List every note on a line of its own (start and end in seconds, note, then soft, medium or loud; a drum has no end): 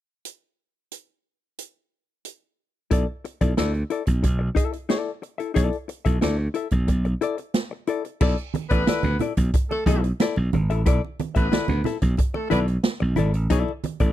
0.25 closed hi-hat medium
0.92 closed hi-hat medium
1.58 closed hi-hat medium
2.25 closed hi-hat medium
2.91 3.04 B1 loud
2.91 3.05 E4 medium
2.91 3.06 A4 medium
2.91 3.06 D5 medium
2.91 kick loud
2.91 closed hi-hat medium
3.24 muted hollow-body jazz guitar stroke soft
3.24 closed hi-hat medium
3.41 3.53 B1 medium
3.41 3.53 E4 soft
3.41 3.53 A4 soft
3.41 3.52 D5 medium
3.41 kick medium
3.41 closed hi-hat soft
3.57 3.82 D2 medium
3.57 3.71 E4 medium
3.57 3.72 A4 medium
3.57 3.73 D5 medium
3.57 snare medium
3.57 closed hi-hat medium
3.74 muted hollow-body jazz guitar stroke soft
3.74 closed hi-hat soft
3.90 4.01 E4 medium
3.90 4.02 A4 medium
3.90 4.02 D5 medium
3.90 closed hi-hat medium
4.06 4.20 B1 medium
4.06 muted hollow-body jazz guitar stroke soft
4.06 kick medium
4.06 closed hi-hat medium
4.23 4.48 B1 medium
4.23 muted hollow-body jazz guitar stroke soft
4.23 kick medium
4.23 closed hi-hat medium
4.39 muted hollow-body jazz guitar stroke soft
4.55 4.76 E4 medium
4.55 4.73 A4 medium
4.55 4.72 E5 medium
4.55 kick medium
4.55 closed hi-hat medium
4.73 muted hollow-body jazz guitar stroke soft
4.73 closed hi-hat soft
4.89 5.10 E4 medium
4.89 5.10 A4 medium
4.89 5.10 D5 medium
4.89 snare loud
4.89 closed hi-hat medium
5.22 muted hollow-body jazz guitar stroke soft
5.22 closed hi-hat soft
5.38 5.51 E4 soft
5.38 5.51 A4 soft
5.38 5.50 E5 medium
5.38 closed hi-hat soft
5.54 5.69 B1 medium
5.54 5.75 E4 medium
5.54 5.76 A4 medium
5.54 5.76 D5 medium
5.54 kick medium
5.54 closed hi-hat medium
5.73 closed hi-hat soft
5.88 muted hollow-body jazz guitar stroke soft
5.88 closed hi-hat medium
6.05 6.18 B1 medium
6.05 6.17 E4 soft
6.05 6.17 A4 medium
6.05 6.17 E5 medium
6.05 kick medium
6.05 closed hi-hat soft
6.21 6.47 D2 medium
6.21 6.36 E4 medium
6.21 6.37 A4 medium
6.21 6.37 D5 medium
6.21 snare loud
6.21 closed hi-hat medium
6.39 muted hollow-body jazz guitar stroke medium
6.54 6.66 E4 medium
6.54 6.67 A4 medium
6.54 6.67 E5 medium
6.54 closed hi-hat medium
6.71 6.84 B1 medium
6.71 muted hollow-body jazz guitar stroke soft
6.71 kick medium
6.71 closed hi-hat soft
6.87 7.13 B1 medium
6.87 muted hollow-body jazz guitar stroke soft
6.87 kick medium
6.87 closed hi-hat medium
7.05 muted hollow-body jazz guitar stroke soft
7.05 closed hi-hat soft
7.21 7.36 E4 medium
7.21 7.36 A4 medium
7.21 7.37 D5 medium
7.21 closed hi-hat medium
7.38 muted hollow-body jazz guitar stroke medium
7.38 closed hi-hat soft
7.54 snare loud
7.54 closed hi-hat medium
7.71 muted hollow-body jazz guitar stroke soft
7.87 8.02 E4 medium
7.87 8.03 A4 medium
7.87 8.03 D5 medium
7.87 closed hi-hat medium
8.05 muted hollow-body jazz guitar stroke soft
8.05 closed hi-hat soft
8.21 8.34 B1 loud
8.21 8.35 E4 medium
8.21 8.36 A4 medium
8.21 8.36 D5 loud
8.21 kick loud
8.21 crash medium
8.21 muted conga soft
8.38 closed hi-hat soft
8.54 muted hollow-body jazz guitar stroke soft
8.54 closed hi-hat medium
8.54 high conga medium
8.70 8.83 A1 medium
8.70 9.17 B3 medium
8.70 8.83 E4 medium
8.70 8.83 A4 medium
8.70 9.17 B4 loud
8.70 8.82 D5 medium
8.70 kick medium
8.70 closed hi-hat soft
8.87 9.01 E4 medium
8.87 9.02 A4 medium
8.87 9.03 D5 medium
8.87 muted slap bass stroke soft
8.87 snare loud
8.87 closed hi-hat medium
8.87 high conga medium
9.03 9.16 D2 medium
9.03 closed hi-hat soft
9.03 muted conga soft
9.03 high conga medium
9.03 low conga medium
9.19 9.32 E4 medium
9.19 9.32 A4 medium
9.19 9.33 D5 medium
9.19 closed hi-hat medium
9.19 low conga medium
9.37 9.50 B1 medium
9.37 muted hollow-body jazz guitar stroke medium
9.37 kick medium
9.37 closed hi-hat medium
9.54 muted hollow-body jazz guitar stroke soft
9.54 kick loud
9.54 closed hi-hat medium
9.70 9.83 A3 medium
9.70 9.83 A4 medium
9.70 muted hollow-body jazz guitar stroke soft
9.70 muted conga soft
9.85 10.11 B1 loud
9.85 9.99 A3 medium
9.85 10.07 E4 medium
9.85 10.00 A4 medium
9.85 10.04 A4 medium
9.85 10.03 E5 medium
9.85 kick loud
9.85 closed hi-hat medium
9.85 high conga medium
10.04 muted hollow-body jazz guitar stroke medium
10.04 closed hi-hat soft
10.20 10.35 E4 medium
10.20 10.35 A4 loud
10.20 10.35 D5 loud
10.20 snare loud
10.20 closed hi-hat medium
10.20 muted conga soft
10.36 10.49 B1 medium
10.36 muted conga soft
10.53 10.70 G#1 medium
10.53 muted hollow-body jazz guitar stroke soft
10.53 closed hi-hat medium
10.53 high conga medium
10.53 low conga medium
10.70 10.87 A1 medium
10.70 10.82 E4 soft
10.70 10.81 A4 soft
10.70 10.81 E5 medium
10.70 closed hi-hat soft
10.86 10.99 B1 loud
10.86 11.00 E4 medium
10.86 11.01 A4 medium
10.86 11.01 D5 loud
10.86 kick loud
10.86 closed hi-hat medium
11.05 muted conga soft
11.19 muted hollow-body jazz guitar stroke soft
11.19 closed hi-hat medium
11.19 high conga medium
11.35 11.48 A1 medium
11.35 11.82 B3 medium
11.35 11.47 E4 soft
11.35 11.47 A4 medium
11.35 11.82 B4 medium
11.35 11.46 E5 medium
11.35 kick medium
11.35 closed hi-hat soft
11.52 11.66 E4 medium
11.52 11.67 A4 medium
11.52 11.67 D5 medium
11.52 muted slap bass stroke soft
11.52 snare loud
11.52 closed hi-hat medium
11.52 high conga medium
11.68 11.81 D2 medium
11.68 closed hi-hat soft
11.68 muted conga soft
11.68 high conga medium
11.68 low conga medium
11.84 11.96 E4 medium
11.84 11.97 A4 medium
11.84 11.97 E5 medium
11.84 snare soft
11.84 closed hi-hat medium
11.84 low conga medium
12.02 12.14 B1 medium
12.02 muted hollow-body jazz guitar stroke soft
12.02 kick medium
12.02 closed hi-hat medium
12.17 muted hollow-body jazz guitar stroke soft
12.17 kick medium
12.17 closed hi-hat medium
12.17 muted conga soft
12.34 12.48 A3 medium
12.34 12.48 A4 medium
12.34 muted hollow-body jazz guitar stroke soft
12.34 muted conga soft
12.50 12.76 B1 medium
12.50 12.61 B3 medium
12.50 12.65 E4 medium
12.50 12.66 A4 medium
12.50 12.60 B4 medium
12.50 12.66 D5 medium
12.50 closed hi-hat medium
12.50 high conga medium
12.68 muted hollow-body jazz guitar stroke soft
12.68 closed hi-hat soft
12.83 snare loud
12.83 closed hi-hat medium
12.83 muted conga soft
13.00 13.14 B1 medium
13.00 muted hollow-body jazz guitar stroke medium
13.00 muted conga soft
13.16 13.35 G#1 medium
13.16 13.31 E4 medium
13.16 13.32 A4 medium
13.16 13.32 D5 medium
13.16 closed hi-hat medium
13.16 high conga medium
13.16 low conga medium
13.34 13.47 A1 medium
13.34 muted hollow-body jazz guitar stroke soft
13.34 closed hi-hat soft
13.50 13.63 B1 loud
13.50 13.70 E4 medium
13.50 13.71 A4 loud
13.50 13.71 D5 loud
13.50 kick loud
13.50 closed hi-hat medium
13.50 muted conga soft
13.68 muted conga soft
13.84 muted hollow-body jazz guitar stroke soft
13.84 closed hi-hat medium
13.84 high conga medium
14.00 14.13 A1 medium
14.00 14.12 E4 medium
14.00 14.12 A4 medium
14.00 14.11 D5 medium
14.00 kick medium
14.00 closed hi-hat medium